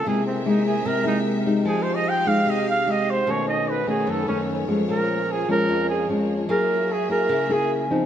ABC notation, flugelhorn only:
X:1
M:4/4
L:1/8
Q:1/4=149
K:Cphr
V:1 name="Flugelhorn"
^G C ^D G B D z2 | (3A c e g f e f e c | ^c ^d =B A =A ^C z2 | B2 A B2 A z2 |
B2 A B2 A z2 |]